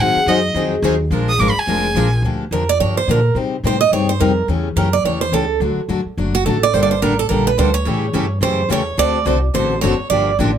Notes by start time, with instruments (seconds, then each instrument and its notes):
0.00 upright bass G#2, steel-string acoustic guitar D#3 F#3 C4 D#4 G#4, violin F#5
0.16 muted upright bass stroke
0.26 upright bass F#2, steel-string acoustic guitar D#3 F#3 C4 D#4 G#4, violin D#5
0.54 upright bass F2, steel-string acoustic guitar D#3 F#3 C4 D#4 G#4
0.82 upright bass D#2, steel-string acoustic guitar D#3 F#3 C4 D#4 G#4
1.10 upright bass A#1, steel-string acoustic guitar F3 G#3 D4 F4 A#4
1.29 violin D#6
1.39 upright bass G#1, steel-string acoustic guitar F3 G#3 D4 F4 A#4, violin D6
1.50 violin B5
1.56 violin G#5, muted upright bass stroke
1.67 upright bass F1, steel-string acoustic guitar F3 G#3 D4 F4 A#4
1.95 upright bass A#1, steel-string acoustic guitar F3 G#3 D4 F4 A#4
2.22 upright bass D2, steel-string acoustic guitar D3 F3 A#3 D4 G4
2.51 upright bass F2, steel-string acoustic guitar D3 F3 A#3 D4 G4 A#4
2.69 steel-string acoustic guitar D5
2.80 upright bass G2, steel-string acoustic guitar D3 F3 A#3 D4 G4 C#5
2.97 steel-string acoustic guitar C5
3.08 upright bass A#2, steel-string acoustic guitar D3 F3 A#3 D4 G4 A#4
3.35 upright bass C3, steel-string acoustic guitar C3 G3 C4 D#4 G4
3.63 upright bass A2, steel-string acoustic guitar C3 G3 C4 D#4 G4 C5
3.81 steel-string acoustic guitar D#5
3.91 upright bass G2, steel-string acoustic guitar C3 G3 C4 D#4 G4 C#5
4.09 steel-string acoustic guitar C5
4.20 upright bass F2, steel-string acoustic guitar C3 G3 C4 D#4 G4 A#4
4.48 upright bass E2, steel-string acoustic guitar C#3 E3 A3 C#4 G4
4.76 upright bass F#2, steel-string acoustic guitar C#3 E3 A3 C#4 G4 A#4
4.93 steel-string acoustic guitar D5
5.04 upright bass E2, steel-string acoustic guitar C#3 E3 A3 C#4 G4 C#5
5.21 steel-string acoustic guitar C5
5.32 upright bass C#2, steel-string acoustic guitar C#3 E3 A3 C#4 G4 A4
5.60 upright bass D2, steel-string acoustic guitar D3 F#3 A3 D4 F#4
5.76 muted upright bass stroke
5.89 upright bass F#2, steel-string acoustic guitar D3 F#3 A3 D4 F#4
6.05 muted upright bass stroke
6.17 upright bass F#1, steel-string acoustic guitar D3 F#3 A3 D4 F#4
6.35 steel-string acoustic guitar F#4
6.45 upright bass A1, steel-string acoustic guitar D3 F#3 A3 D4 F#4 A4
6.63 steel-string acoustic guitar D5
6.74 upright bass G1, steel-string acoustic guitar D3 G3 A#3 D4 A4 C5
6.83 steel-string acoustic guitar D5
6.91 steel-string acoustic guitar C5
7.02 upright bass A1, steel-string acoustic guitar D3 G3 A#3 D4 A4 A#4
7.19 steel-string acoustic guitar A4
7.29 upright bass A#1, steel-string acoustic guitar D3 G3 A#3 D4 A4 A#4
7.47 steel-string acoustic guitar B4
7.58 upright bass D2, steel-string acoustic guitar D3 G3 A#3 D4 A4 C5
7.74 steel-string acoustic guitar C#5
7.85 upright bass A2, steel-string acoustic guitar C#3 E3 G3 A3 C#4 E4 G4 A4
8.14 upright bass G2, steel-string acoustic guitar C#3 E3 G3 A3 C#4 E4 G4 A4
8.41 upright bass F#2, steel-string acoustic guitar C#3 E3 G3 A3 C#4 E4 G4 A4 C5
8.69 upright bass E2, steel-string acoustic guitar C#3 E3 G3 A3 C#4 E4 G4 A4 C#5
8.97 upright bass D2, steel-string acoustic guitar D3 A3 C4 F#4 A4 D5
9.25 upright bass C2, steel-string acoustic guitar D3 A3 C4 F#4 A4
9.54 upright bass A1, steel-string acoustic guitar D3 A3 C4 F#4 A4 C5
9.81 upright bass F#1, steel-string acoustic guitar D3 A3 C4 F#4 A4 C#5
9.99 muted upright bass stroke
10.10 upright bass G1, steel-string acoustic guitar D3 F3 A#3 D4 G4 D5
10.39 upright bass A1, steel-string acoustic guitar D3 F3 A#3 D4 G4